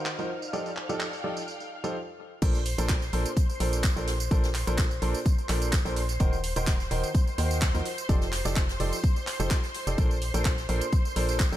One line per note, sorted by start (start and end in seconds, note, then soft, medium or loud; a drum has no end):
0.00 1.95 D#4 medium
0.00 0.30 F#4 medium
0.00 0.93 C5 medium
0.00 1.95 F5 medium
0.00 1.95 F6 medium
0.06 clap loud
0.06 tambourine medium
0.19 0.28 F3 medium
0.19 0.28 D#4 medium
0.19 0.28 F#4 medium
0.19 0.28 A#4 medium
0.19 0.28 C5 medium
0.19 tambourine soft
0.39 1.95 D5 medium
0.39 tambourine medium
0.44 1.95 A4 medium
0.53 0.68 F3 medium
0.53 0.68 D#4 medium
0.53 0.68 F4 medium
0.53 0.68 G4 medium
0.53 0.68 A4 medium
0.53 0.68 D5 loud
0.53 tambourine medium
0.66 tambourine soft
0.77 clap medium
0.89 1.03 F3 medium
0.89 1.03 D#4 medium
0.89 1.03 F4 medium
0.89 1.03 G4 medium
0.89 1.03 A4 medium
0.89 1.03 D5 medium
0.89 tambourine medium
0.93 1.95 G5 medium
0.98 1.95 F5 medium
0.98 clap loud
0.98 tambourine soft
1.13 tambourine soft
1.24 1.39 F3 medium
1.24 1.39 D#4 medium
1.24 1.39 F4 medium
1.24 1.39 G4 medium
1.24 1.39 A4 medium
1.24 1.39 D5 medium
1.37 tambourine medium
1.48 tambourine medium
1.60 tambourine soft
1.84 1.95 F3 medium
1.84 1.95 D#4 medium
1.84 1.95 F4 medium
1.84 1.95 G4 medium
1.84 1.95 A4 medium
1.84 1.95 C5 medium
1.84 tambourine medium
2.42 2.76 A#1 loud
2.42 2.57 A#2 medium
2.42 2.57 D4 medium
2.42 2.57 A4 medium
2.42 2.57 A#4 medium
2.42 2.57 C5 loud
2.42 11.57 C5 medium
2.42 11.57 C6 medium
2.42 kick loud
2.42 closed hi-hat medium
2.42 tambourine medium
2.42 crash loud
2.55 tambourine soft
2.66 closed hi-hat medium
2.66 open hi-hat loud
2.78 3.11 A#1 medium
2.78 2.92 A#2 loud
2.78 2.92 D4 medium
2.78 2.92 A4 medium
2.78 2.92 A#4 medium
2.78 2.92 C5 loud
2.78 closed hi-hat medium
2.78 tambourine medium
2.89 kick loud
2.89 snare loud
2.89 clap loud
2.89 closed hi-hat medium
2.89 tambourine medium
3.02 snare medium
3.02 tambourine soft
3.13 3.26 A#1 medium
3.13 3.28 A#2 medium
3.13 3.28 D4 medium
3.13 3.28 A4 medium
3.13 3.28 A#4 medium
3.13 3.28 C5 loud
3.13 closed hi-hat medium
3.13 open hi-hat medium
3.26 closed hi-hat medium
3.26 tambourine medium
3.37 kick loud
3.37 closed hi-hat medium
3.37 tambourine medium
3.49 tambourine soft
3.60 3.94 A#1 medium
3.60 3.84 A#2 medium
3.60 3.84 D4 medium
3.60 3.84 A4 medium
3.60 3.84 A#4 medium
3.60 3.83 C5 medium
3.60 closed hi-hat medium
3.60 open hi-hat loud
3.73 snare soft
3.73 closed hi-hat medium
3.73 tambourine medium
3.84 kick loud
3.84 snare loud
3.84 clap loud
3.84 closed hi-hat medium
3.84 tambourine medium
3.96 4.29 A#1 medium
3.96 4.10 A#2 medium
3.96 4.10 D4 medium
3.96 4.10 A4 medium
3.96 4.10 A#4 medium
3.96 4.10 C5 medium
3.96 tambourine soft
4.07 snare loud
4.07 closed hi-hat medium
4.07 open hi-hat medium
4.20 closed hi-hat medium
4.20 tambourine medium
4.31 4.65 A#1 loud
4.31 4.46 A#2 medium
4.31 4.46 D4 medium
4.31 4.46 A4 medium
4.31 4.46 A#4 medium
4.31 4.46 C5 loud
4.31 kick loud
4.31 closed hi-hat medium
4.31 tambourine medium
4.43 snare loud
4.43 closed hi-hat medium
4.43 tambourine soft
4.55 clap medium
4.55 open hi-hat loud
4.67 5.00 A#1 medium
4.67 4.81 A#2 loud
4.67 4.81 D4 medium
4.67 4.81 A4 medium
4.67 4.81 A#4 medium
4.67 4.81 C5 loud
4.67 closed hi-hat medium
4.67 tambourine medium
4.78 kick loud
4.78 snare loud
4.78 clap loud
4.78 closed hi-hat medium
4.78 tambourine medium
4.91 tambourine soft
5.02 5.15 A#1 loud
5.02 5.17 A#2 medium
5.02 5.17 D4 medium
5.02 5.17 A4 medium
5.02 5.17 A#4 medium
5.02 5.17 C5 medium
5.02 open hi-hat medium
5.14 closed hi-hat medium
5.14 tambourine medium
5.26 kick loud
5.26 closed hi-hat medium
5.26 tambourine medium
5.38 tambourine soft
5.49 5.83 A#1 medium
5.49 5.73 A#2 medium
5.49 5.73 D4 medium
5.49 5.73 A4 medium
5.49 5.73 A#4 medium
5.49 5.73 C5 medium
5.49 snare soft
5.49 clap medium
5.49 closed hi-hat medium
5.49 open hi-hat loud
5.62 closed hi-hat medium
5.62 tambourine medium
5.73 kick loud
5.73 snare loud
5.73 clap loud
5.73 closed hi-hat medium
5.73 tambourine medium
5.85 6.18 A#1 loud
5.85 5.99 A#2 medium
5.85 5.99 D4 medium
5.85 5.99 A4 medium
5.85 5.99 A#4 medium
5.85 5.99 C5 medium
5.85 snare soft
5.85 tambourine soft
5.96 closed hi-hat medium
5.96 open hi-hat loud
6.09 snare soft
6.09 closed hi-hat medium
6.09 tambourine medium
6.20 6.54 D#1 loud
6.20 6.35 D#3 medium
6.20 6.35 D#4 medium
6.20 6.35 F#4 medium
6.20 6.35 A#4 medium
6.20 6.35 C5 loud
6.20 kick loud
6.20 closed hi-hat medium
6.20 tambourine medium
6.33 tambourine soft
6.44 closed hi-hat medium
6.44 open hi-hat loud
6.56 6.89 D#1 loud
6.56 6.70 D#3 loud
6.56 6.70 D#4 medium
6.56 6.70 F#4 medium
6.56 6.70 A#4 medium
6.56 6.70 C5 loud
6.56 closed hi-hat medium
6.56 tambourine medium
6.67 kick loud
6.67 snare loud
6.67 clap loud
6.67 closed hi-hat medium
6.67 tambourine medium
6.80 snare medium
6.80 tambourine soft
6.91 7.04 D#1 loud
6.91 7.06 D#3 medium
6.91 7.06 D#4 medium
6.91 7.06 F#4 medium
6.91 7.06 A#4 medium
6.91 7.06 C5 loud
6.91 closed hi-hat medium
6.91 open hi-hat loud
7.04 closed hi-hat medium
7.04 tambourine medium
7.14 kick loud
7.14 closed hi-hat medium
7.14 tambourine medium
7.27 tambourine soft
7.38 7.72 D#2 loud
7.38 7.61 D#3 medium
7.38 7.61 D#4 medium
7.38 7.61 F#4 medium
7.38 7.61 A#4 medium
7.38 7.61 C5 medium
7.38 closed hi-hat medium
7.38 open hi-hat loud
7.51 snare soft
7.51 closed hi-hat medium
7.51 tambourine medium
7.62 kick loud
7.62 snare loud
7.62 clap loud
7.62 closed hi-hat medium
7.62 tambourine medium
7.74 7.82 D#2 medium
7.74 7.84 F3 medium
7.74 7.84 D#4 medium
7.74 7.84 F#4 medium
7.74 7.84 A#4 medium
7.74 7.84 C5 medium
7.74 tambourine soft
7.86 closed hi-hat medium
7.86 open hi-hat medium
7.98 closed hi-hat medium
7.98 tambourine medium
8.09 8.43 F1 loud
8.09 8.24 F3 medium
8.09 8.24 D#4 medium
8.09 8.24 G4 medium
8.09 8.24 A4 medium
8.09 8.24 D5 loud
8.09 kick loud
8.09 closed hi-hat medium
8.09 tambourine medium
8.21 snare medium
8.21 tambourine soft
8.32 snare loud
8.32 clap medium
8.32 closed hi-hat medium
8.32 open hi-hat loud
8.45 8.78 F1 loud
8.45 8.59 F3 medium
8.45 8.59 D#4 medium
8.45 8.59 G4 medium
8.45 8.59 A4 medium
8.45 8.59 D5 loud
8.45 snare loud
8.45 closed hi-hat medium
8.45 tambourine medium
8.56 kick loud
8.56 snare loud
8.56 clap loud
8.56 closed hi-hat soft
8.56 tambourine medium
8.69 snare loud
8.69 closed hi-hat medium
8.69 tambourine soft
8.80 8.93 F1 loud
8.80 8.95 F3 medium
8.80 8.95 D#4 medium
8.80 8.95 G4 medium
8.80 8.95 A4 medium
8.80 8.95 D5 loud
8.80 open hi-hat loud
8.80 open hi-hat medium
8.93 closed hi-hat medium
8.93 tambourine medium
9.04 kick loud
9.04 closed hi-hat medium
9.04 tambourine medium
9.16 tambourine soft
9.27 snare soft
9.27 clap medium
9.27 closed hi-hat medium
9.27 open hi-hat loud
9.40 9.51 F1 loud
9.40 9.54 F3 loud
9.40 9.54 D#4 medium
9.40 9.54 G4 medium
9.40 9.54 A4 medium
9.40 9.54 C5 loud
9.40 closed hi-hat medium
9.40 tambourine medium
9.51 kick loud
9.51 snare loud
9.51 clap loud
9.51 closed hi-hat medium
9.51 tambourine medium
9.63 snare medium
9.63 tambourine soft
9.75 closed hi-hat medium
9.75 open hi-hat loud
9.87 9.96 F1 medium
9.87 9.96 D#4 medium
9.87 9.96 G4 medium
9.87 9.96 A4 medium
9.87 9.96 D5 medium
9.87 snare soft
9.87 closed hi-hat medium
9.87 tambourine medium
9.98 10.32 A#1 loud
9.98 10.13 A#2 loud
9.98 10.13 D4 medium
9.98 10.13 A4 medium
9.98 10.13 A#4 medium
9.98 10.13 C5 loud
9.98 kick loud
9.98 closed hi-hat medium
9.98 tambourine medium
10.11 tambourine soft
10.22 closed hi-hat medium
10.22 open hi-hat loud
10.34 10.67 A#1 loud
10.34 10.48 A#2 medium
10.34 10.48 D4 medium
10.34 10.48 A4 medium
10.34 10.48 A#4 medium
10.34 10.48 C5 loud
10.34 closed hi-hat medium
10.34 tambourine medium
10.45 kick loud
10.45 snare loud
10.45 clap loud
10.45 closed hi-hat soft
10.45 closed hi-hat medium
10.45 tambourine medium
10.58 snare medium
10.58 tambourine soft
10.69 10.82 A#1 medium
10.69 10.84 A#2 medium
10.69 10.84 D4 medium
10.69 10.84 A4 medium
10.69 10.84 A#4 medium
10.69 10.84 C5 loud
10.69 closed hi-hat medium
10.69 open hi-hat medium
10.81 closed hi-hat medium
10.81 tambourine medium
10.92 kick loud
10.92 closed hi-hat medium
10.92 closed hi-hat soft
10.92 tambourine medium
11.05 tambourine soft
11.16 11.50 A#1 medium
11.16 11.39 A#2 medium
11.16 11.40 D4 medium
11.16 11.39 A4 medium
11.16 11.39 A#4 medium
11.16 11.39 C5 loud
11.16 closed hi-hat medium
11.16 open hi-hat loud
11.29 snare medium
11.29 closed hi-hat medium
11.29 tambourine medium
11.40 kick loud
11.40 snare loud
11.40 clap loud
11.40 closed hi-hat medium
11.40 tambourine medium
11.52 11.57 A#1 medium
11.52 11.57 A#2 medium
11.52 11.57 D4 medium
11.52 11.57 A4 medium
11.52 11.57 A#4 medium
11.52 11.57 C5 medium
11.52 tambourine soft